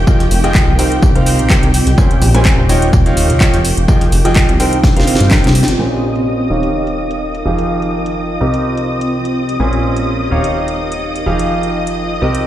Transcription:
Already playing: D#4 F4 G4 A#4 F5 G5
0.07 F3 F4 G#4 D#5 G5, kick, tambourine
0.20 closed hi-hat
0.27 C5
0.31 F1, open hi-hat, tambourine
0.44 F3 F4 G#4 D#5 G5, snare, closed hi-hat
0.55 kick, snare, clap, tambourine
0.68 C2
0.79 C3 C4 D#4 A#4 C5 G5, open hi-hat, tambourine
0.92 closed hi-hat
1.02 C2, kick, tambourine
1.15 C3 D#4 G4 A#4 C5 F5, closed hi-hat
1.26 snare, open hi-hat, tambourine
1.33 D#5
1.39 A#1, closed hi-hat
1.50 C3 D#4 A#4 C5 G5, kick, snare, clap, tambourine
1.63 C2, closed hi-hat
1.74 open hi-hat, tambourine
1.87 C2, closed hi-hat
1.98 A#2 C#4 A#4 C5 G#5, kick, tambourine
2.11 closed hi-hat
2.22 A#1, open hi-hat, tambourine
2.31 A#2 C#4 A#4 C5 F5 G#5, closed hi-hat
2.45 kick, snare, clap, tambourine
2.58 D#1
2.69 D#3 D#4 F4 C#5 D#5 G5, open hi-hat, tambourine
2.82 closed hi-hat
2.93 D#1, kick, tambourine
3.06 D#3 F4 C#5 D#5 F5, snare, closed hi-hat
3.17 open hi-hat, tambourine
3.30 C#2, snare, closed hi-hat
3.41 F3 F4 C#5 D#5 G5, kick, snare, clap, tambourine
3.54 F1, closed hi-hat
3.65 F4, open hi-hat, tambourine
3.77 F1, closed hi-hat
3.88 F3 F4 G#4 D#5 G5, kick, tambourine
3.95 C5
4.01 closed hi-hat
4.12 F1, open hi-hat, tambourine
4.25 F3 F4 G#4 D#5 G5, snare, closed hi-hat
4.36 kick, snare, clap, tambourine
4.49 C2, closed hi-hat
4.60 C3 C4 D#4 A#4 C5 G5, open hi-hat, tambourine
4.73 closed hi-hat
4.83 G1 G4, kick, snare, tambourine
4.96 C3 D#4 A#4 C5 F5, snare, closed hi-hat
5.07 snare, open hi-hat, tambourine
5.14 D#5, snare
5.20 G1, closed hi-hat
5.31 C3 D#4 A#4 C5 G5, kick, snare, clap, tambourine
5.44 C2, snare, closed hi-hat
5.55 open hi-hat, tambourine
5.63 snare
5.68 G1, closed hi-hat
5.79 A#1 A#2 C#4 A#4 C5 D#5 G#5 D#6
5.91 F5, closed hi-hat
6.15 closed hi-hat
6.50 D#1 D#3 D#4 G4 C#5 F5
6.63 closed hi-hat
6.87 closed hi-hat
7.11 closed hi-hat
7.35 closed hi-hat
7.45 F1 F3 D#4 F4 G4 G#4 F5
7.58 closed hi-hat
7.82 C5, closed hi-hat
8.06 closed hi-hat
8.41 C2 C3 C4 G4 A#4 D#5
8.54 G4, closed hi-hat
8.77 closed hi-hat
8.95 D#5
9.01 closed hi-hat
9.25 closed hi-hat
9.49 closed hi-hat
9.60 A#1 A#2 C#4 A#4 C5 G#5
9.73 closed hi-hat
9.91 F5
9.96 closed hi-hat
10.31 D#1 D#3 D#4 G4 C#5 F5
10.44 closed hi-hat
10.68 closed hi-hat
10.92 closed hi-hat
11.16 closed hi-hat
11.26 F1 F3 D#4 F4 G4 G#4 F5
11.39 closed hi-hat
11.56 C5
11.63 closed hi-hat
11.87 closed hi-hat
12.22 C2 C3 C4 G4 A#4 D#5
12.35 G4, closed hi-hat

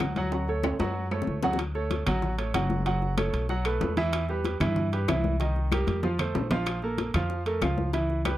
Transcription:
Already playing: F#3 F#4 F#5
0.00 D2, high bongo, low bongo, high conga, high timbale, low timbale, claves
0.16 F#3 F#4 F#5, high bongo, high conga, high timbale
0.32 F#3 F#4 F#5, high bongo, high conga, high timbale
0.48 A3 A4 C#5, high conga
0.63 high bongo, high conga, high timbale, claves
0.79 F#2 F#3 F#4 F#5, high bongo, high conga, low timbale
0.95 high conga
1.11 A3 A4 C#5, high conga, low timbale, claves
1.22 low bongo
1.27 D2, high conga
1.43 F#3 F#4 F#5, low bongo, high conga, low timbale
1.53 low bongo
1.59 high bongo, high conga, high timbale, claves
1.75 A3 A4 C#5, high bongo, high conga
1.91 high bongo, high conga, high timbale
2.06 A1 F#3 F#4 F#5, high conga, low conga, high timbale, claves
2.22 high bongo, high conga, low conga
2.38 A3 A4 C#5, high bongo, high conga, high timbale
2.54 F#1 F#3 F#4 F#5, high bongo, low bongo, high conga, high timbale, claves
2.70 high bongo, high conga
2.86 F#3 F#4 F#5, high bongo, high conga, high timbale
3.02 high bongo, high conga
3.18 A3 A4 C#5, high bongo, high conga, high timbale, claves
3.33 B1, high conga, high timbale
3.49 F#3 F#4 F#5, high bongo, high conga
3.65 A3 A4 B4, high conga, high timbale, claves
3.81 E2, high bongo, low bongo, high conga, low timbale
3.97 E3 E4 E5, high bongo, high conga, high timbale
4.13 high bongo, high timbale, claves
4.29 G3 G4 B4, high bongo, high conga
4.44 high bongo, high conga, high timbale
4.60 G2 E3 E4 E5, high conga, low conga, high timbale, claves
4.76 high bongo, high conga, low conga
4.92 G3 G4 B4, high bongo, high conga, high timbale
5.08 C2 E3 E4 E5, high bongo, low bongo, high conga, high timbale, low timbale, claves
5.24 high bongo, high conga
5.40 D#3 D#4 D#5, high bongo, high conga, high timbale
5.56 high bongo, high conga
5.71 G3 G4 A#4, high bongo, high conga, high timbale, claves
5.87 F2, high conga, high timbale
6.03 F3 F4 F5, high bongo, low conga
6.19 A3 A4 C5, low conga, high timbale, claves
6.35 A#1, high bongo, low bongo, low timbale
6.51 F3 F4 F5, high bongo, low conga, high timbale
6.66 high bongo, high conga, high timbale, claves
6.82 A#3 A4 A#4, high bongo, high conga
6.98 high bongo, high conga, high timbale
7.14 F2 F3 F4 F5, high conga, low conga, high timbale, claves
7.30 high bongo, high conga
7.46 A3 A4 A#4, high bongo, high conga, high timbale
7.61 C#2 F3 F4 F5, high bongo, low bongo, high conga, high timbale, claves
7.78 high bongo, high conga
7.93 E3 E4 E5, high bongo, high conga, high timbale
8.09 high bongo, high conga
8.25 G3 G4 B4, high bongo, high conga, high timbale, claves

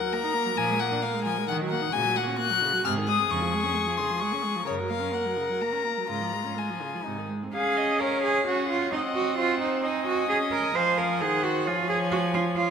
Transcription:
Already playing: A#4 F#5
0.00 F#3
0.12 A#3 A#5
0.24 D#4
0.34 A#3
0.46 F#3
0.56 A#2 F3 G#5
0.69 G#3
0.79 A#3 F#5
0.91 D4
1.02 A#3 F5
1.13 G#3
1.24 F3 G#5
1.38 G#3
1.48 D#3 F#5
1.61 F#3
1.70 A#3 F#5
1.81 D#4
1.92 A#2 C#3 F#4 G#5
2.05 F#3
2.16 A#3 F#5
2.28 C#4
2.38 A#3 F#6
2.50 F#3
2.63 C#3
2.73 F#3
2.85 G#2 C3 G#4 F6
2.97 D#3
3.08 G#3 D#6
3.19 C4
3.29 F2 C#3 C#6
3.41 F3
3.54 G#3
3.65 C#4
3.75 G#3
3.87 F3
3.97 C#3 C6
4.11 F3
4.20 G#3 C#6
4.33 C#4
4.44 G#3
4.55 F3
4.66 F#2 C#3 A#4 C#5
4.79 F#3
4.90 A#3 F5
5.01 C#4
5.13 A#3 F#5
5.25 F#3
5.38 C#3
5.50 F#3
5.61 A#3 A#5
5.73 C#4
5.85 A#3
5.97 F#3
6.08 G#2 C#3 F4 A#5
6.21 F3
6.33 G#3
6.45 C#4
6.57 G#3 G#5
6.69 F3
6.81 C#3
6.95 F3
7.04 G#2 C3 D#4
7.18 D#3
7.29 G#3
7.43 C4
7.52 C#4 G#4 F5 G#5
7.77 D#5
8.00 A#4 C#5 F5
8.24 G#4
8.47 C#4 F#4 C#5 F#5
8.70 F4
8.92 C4 D#4 D#5 F#5
9.16 F#4
9.38 F4 C5
9.61 D#4
9.83 D#4 D#5 G#5
10.07 F#4
10.29 C#4 G#4
10.52 A#4
10.75 F3 C5 F5 G#5
10.98 A#4
11.21 D#3 G#4 C5 F#5
11.44 F#4
11.65 F3 F4 C#5 G#5
11.89 G#4
12.12 F#4
12.34 F4
12.56 F4 C#5 F5

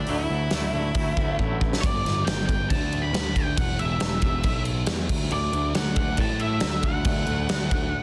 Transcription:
0.06 D2 D3 F#3 A3 E4, open hi-hat
0.30 D2 F#3 A3 E4
0.50 D2 D3 F#3 A3 E4, snare, open hi-hat
0.73 D2 D3 F#3 A3 E4
0.94 D2 D3 F#3 A3 E4, kick, open hi-hat
1.17 D2 F#3 A3 E4, kick
1.38 A1 D3 F#3 A3 E4, kick
1.60 F#3 A3 E4, kick
1.73 snare
1.81 G1 D5, kick, crash
2.05 G1, snare, crash
2.25 G1 G5, snare, crash
2.47 G1 G5, kick, crash
2.70 D2 A5, kick, crash
2.92 crash
3.02 B5
3.13 D2, snare, crash
3.36 G5, kick, crash
3.58 E1 F#5, kick, crash
3.79 E1 E5, crash
4.00 E1, snare, crash
4.22 E1, kick, crash
4.43 B1, kick, crash
4.65 crash
4.86 E2, snare, crash
5.09 D2, kick, crash
5.31 D2 D5, crash
5.53 D2, crash
5.75 D2 F#5, snare, crash
5.96 D2 F#5, kick, crash
6.17 A2 A5, kick, crash
6.39 E5, crash
6.60 D2, snare, crash
6.83 F#5, kick, crash
7.05 D2, kick, crash
7.27 D2, crash
7.49 D2, snare, crash
7.71 D2, kick, crash

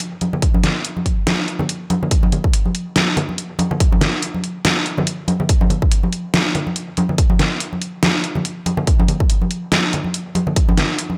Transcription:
0.21 closed hi-hat, high conga
0.33 low conga
0.42 kick, closed hi-hat
0.54 high conga
0.64 snare, closed hi-hat, low conga
0.85 closed hi-hat
0.97 high conga
1.06 kick, closed hi-hat
1.27 snare, closed hi-hat, high conga
1.48 closed hi-hat
1.59 high conga, low conga
1.69 closed hi-hat
1.90 closed hi-hat, high conga
2.03 low conga
2.11 kick, closed hi-hat
2.23 high conga
2.32 closed hi-hat, low conga
2.44 kick
2.53 closed hi-hat
2.66 high conga
2.75 closed hi-hat
2.96 snare, closed hi-hat, high conga
3.17 closed hi-hat, low conga
3.29 high conga
3.38 closed hi-hat
3.59 closed hi-hat, high conga
3.71 low conga
3.80 kick, closed hi-hat
3.92 high conga
4.01 snare, closed hi-hat, low conga
4.22 closed hi-hat
4.34 high conga
4.44 closed hi-hat
4.65 snare, closed hi-hat, high conga
4.86 closed hi-hat
4.98 high conga, low conga
5.07 closed hi-hat
5.28 closed hi-hat, high conga
5.40 low conga
5.49 kick, closed hi-hat
5.61 high conga
5.70 closed hi-hat, low conga
5.82 kick
5.92 closed hi-hat
6.03 high conga
6.13 closed hi-hat
6.34 snare, closed hi-hat, high conga
6.55 closed hi-hat, low conga
6.67 high conga
6.76 closed hi-hat
6.97 closed hi-hat, high conga
7.09 low conga
7.18 kick, closed hi-hat
7.30 high conga
7.39 snare, closed hi-hat, low conga
7.60 closed hi-hat
7.73 high conga
7.82 closed hi-hat
8.03 snare, closed hi-hat, high conga
8.24 closed hi-hat
8.35 high conga, low conga
8.45 closed hi-hat
8.66 closed hi-hat, high conga
8.77 low conga
8.87 kick, closed hi-hat
9.00 high conga
9.08 closed hi-hat, low conga
9.20 kick
9.30 closed hi-hat
9.42 high conga
9.51 closed hi-hat
9.72 snare, closed hi-hat, high conga
9.93 closed hi-hat, low conga
10.04 high conga
10.14 closed hi-hat
10.35 closed hi-hat, high conga
10.47 low conga
10.56 kick, closed hi-hat
10.69 high conga
10.78 snare, closed hi-hat, low conga
10.99 closed hi-hat
11.10 high conga

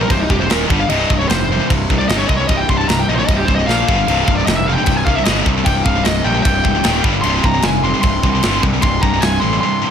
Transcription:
0.01 C2 G2 A#4
0.10 C1 C2 G2 C3 C5, kick, crash
0.19 D#4
0.30 F1 C2 G2 G4, kick
0.40 C2 G2 C5
0.49 D#1 D#2 A#2 D#3 A#4, snare, crash
0.69 G1 G2 D3 G3, kick
0.80 G2 D3 F5
0.89 C1 C2 G2 C3 D#5, crash
1.10 C1 C2 G2, kick
1.19 C2 G2 C#5
1.28 F1 C2 C3 C5, snare, crash
1.33 G2
1.52 C2 G2 C3
1.60 C2 G2
1.70 C1 C2 G2 C3, kick, crash
1.90 C2 G2, kick
1.98 C2 G2 D5
2.09 G1 C2 G2 C3 D#5, snare, crash
2.18 C#5
2.28 C2 G2 C3 D#5, kick
2.37 C2 G2 C#5
2.47 C1 C2 G2 C3 D#5, kick, crash
2.57 G5
2.69 C1 C2 G2 C6, kick
2.78 C2 G2 A5
2.88 C1 C2 G2 C3 A#5, snare, crash
2.99 G5
3.08 A#1 C2 G2 C3 D#5
3.15 C5 C#5
3.20 C2 G2
3.27 C1 C2 G2 C3 D#5, kick, crash
3.36 G4
3.45 C1 C5, kick
3.50 C2 G2
3.55 G2 D#5
3.60 C2
3.66 A#1 A#2 F3 A#3 F5, snare
3.88 G1 G2 D3 G3, kick
4.00 G2 D3
4.08 C1 C2 G2 C3, crash
4.24 C1 F5, kick
4.29 C2 G2
4.35 D5
4.40 C2 G2
4.46 F1 C2 C3 D#5, snare, crash
4.50 G2
4.56 E5
4.66 C2 G2 C3 F5
4.74 G5
4.78 C2 G2
4.84 C1 G5, kick, crash
4.88 C2 G2 C3
4.96 G#5
5.05 C2 G2 F5, kick
5.15 C2 G2 E5
5.24 G1 C2 G2 C3 D#5, snare, crash
5.45 C2 G2 C3, kick
5.58 C2 G2
5.65 C1 C2 G2 C3 G5, kick, crash
5.84 C1 C2 G2 F5, kick
5.95 C2 G2
6.04 C1 C2 G2 C3 D#5, snare, crash
6.24 A#1 C2 G2 C3 G5
6.34 C2 G2
6.43 C1 C2 G2 C3 G5, kick, crash
6.64 C#1 C2 G2, kick
6.75 C2 G2
6.84 D#1 D#2 A#2 D#3, snare, crash
7.04 G1 G2 D3 G3, kick
7.14 G2 D3
7.21 C1 C2 G2 C3 C6, crash
7.43 C1 C2 G2 A#5, kick
7.54 C2 G2
7.62 F1 C2 G2 C3 G#5, snare, crash
7.84 C2 G2 C3 C6
7.94 C2 G2
8.02 C1 C2 G2 C3 C6, kick, crash
8.23 C2 G2, kick
8.35 C2 G2
8.43 G1 C2 G2 C3, snare, crash
8.63 C2 G2 C3, kick
8.74 C2 G2
8.82 C1 C2 G2 C3 C6, kick, crash
9.02 C1 C2 G2 A#5, kick
9.13 C2 G2
9.21 C1 C2 G2 C3 G#5, snare, crash
9.40 A1 C2 G2 C3 C6
9.53 C2 G2
9.61 C2 G2 C3 C6
9.82 C2 G2

